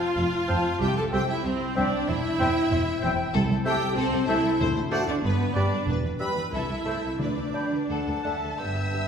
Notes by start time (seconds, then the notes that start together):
Already playing: F4 F5
0.16 F1 F2 F5
0.48 F1 F2 C4 C5 F5 A5
0.80 C2 G4 E5 G5
0.95 A4 A5
1.11 C2 C4 G4 C5 E5 G5
1.29 E4 E5
1.44 C2 C4 C5 E5
1.75 C2 C4 D4 C5 D5 E5 G5
2.07 E1 E2 E4 C5 E5
2.39 E1 E2 C4 C5 E5 G5
2.71 E1 E2 C5
3.02 E1 E2 C4 C5 E5 G5
3.33 C2 A4
3.50 C2 A4
3.65 A3 G4 C5 E5 G5 A5
3.81 C2 A4
3.96 C2 C4 A4 C5
4.12 C2 A4
4.27 C2 A3 E4 A4 C5 E5 A5
4.44 C2 A4
4.59 D2 D3 C5
4.75 D2 C5
4.90 A3 F#4 C5 D5 F#5 A5
5.06 D2 D4 C5 D5
5.23 G1 G2 B3 B4
5.39 G2 B4
5.55 G1 G2 G3 D4 B4 D5 B5
5.72 G2 B4
5.87 E1 E2 B4
6.03 E2 B4
6.18 G3 B4 E5 B5
6.36 E2 B4
6.52 C2 E4 A4 E5
6.70 C2 A4
6.85 C2 A3 A4 C5 E5 A5
7.03 C2 A4
7.19 D2 D3 D4 B4 D5
7.37 D2 B4
7.54 D4 D5 G5 B5
7.72 D2 B4
7.88 D2 A4 F#5 A5
8.06 D2 A4
8.24 D2 D4 A4 E5 F#5 A5
8.42 D2 A4
8.58 G1 G2 B3 D4 G4 E5 G5 E6
8.76 B3 B4
8.92 G3 B3 D4 G4